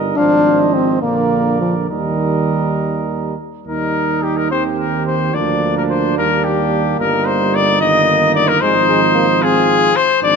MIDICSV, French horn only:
0, 0, Header, 1, 2, 480
1, 0, Start_track
1, 0, Key_signature, -3, "major"
1, 0, Tempo, 567644
1, 151, Time_signature, 6, 3, 24, 8
1, 1113, Tempo, 584226
1, 3513, Tempo, 554017
1, 5433, Tempo, 540054
1, 8905, End_track
2, 0, Start_track
2, 0, Title_t, "French horn"
2, 0, Program_c, 0, 60
2, 139, Note_on_c, 0, 62, 91
2, 623, Note_on_c, 0, 60, 72
2, 636, Note_off_c, 0, 62, 0
2, 856, Note_off_c, 0, 60, 0
2, 861, Note_on_c, 0, 58, 67
2, 1340, Note_off_c, 0, 58, 0
2, 1355, Note_on_c, 0, 53, 54
2, 1464, Note_off_c, 0, 53, 0
2, 1594, Note_on_c, 0, 55, 63
2, 2786, Note_off_c, 0, 55, 0
2, 3050, Note_on_c, 0, 63, 47
2, 3751, Note_on_c, 0, 60, 46
2, 3764, Note_off_c, 0, 63, 0
2, 4470, Note_on_c, 0, 58, 51
2, 4483, Note_off_c, 0, 60, 0
2, 5184, Note_off_c, 0, 58, 0
2, 5189, Note_on_c, 0, 58, 57
2, 6610, Note_off_c, 0, 58, 0
2, 6638, Note_on_c, 0, 58, 58
2, 7342, Note_off_c, 0, 58, 0
2, 7360, Note_on_c, 0, 56, 73
2, 7467, Note_off_c, 0, 56, 0
2, 7592, Note_on_c, 0, 56, 75
2, 7701, Note_off_c, 0, 56, 0
2, 7826, Note_on_c, 0, 58, 73
2, 7936, Note_off_c, 0, 58, 0
2, 8073, Note_on_c, 0, 60, 67
2, 8540, Note_off_c, 0, 60, 0
2, 8788, Note_on_c, 0, 62, 73
2, 8905, Note_off_c, 0, 62, 0
2, 8905, End_track
0, 0, End_of_file